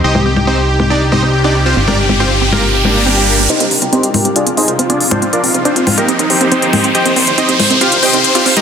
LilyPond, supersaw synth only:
\new Staff \with { instrumentName = "Supersaw synth" } { \time 4/4 \key c \minor \tempo 4 = 139 <ees' g' c'' ees''>16 g'16 g'16 g'16 <c' ees' g' c''>16 g'16 g'16 g'16 <d' ees' g' d''>16 g'16 <ees' g' c'' ees''>16 g'16 g'16 <d' ees' g' d''>16 g'16 <c' f' g' c''>16 | g'16 <d' g' bes' d''>16 g'16 g'16 <c' f' g' c''>16 g'16 g'16 <bes f' g' bes'>16 g'16 g'16 <g bes d' g'>4~ <g bes d' g'>16 r16 | <ees' g' c'' ees''>16 g'16 g'16 g'16 <c' ees' g' c''>16 g'16 g'16 g'16 <d' f' aes' d''>16 f'16 <ees' aes' c'' ees''>16 f'16 f'16 <d' f' aes' d''>16 f'16 <c' d' f' c''>16 | f'16 <d' f' bes' d''>16 f'16 f'16 <c' d' f' c''>16 f'16 f'16 <bes ees' g' bes'>16 ees'16 ees'16 <c' ees' g' c''>4~ <c' ees' g' c''>16 r16 |
<g' c'' ees'' g''>16 c''16 c''16 c''16 <ees' g' c'' ees''>16 c''16 c''16 c''16 <f' g' c'' f''>16 c''16 <g' c'' ees'' g''>16 c''16 c''16 <f' g' c'' f''>16 c''16 <ees' g' bes' ees''>16 | }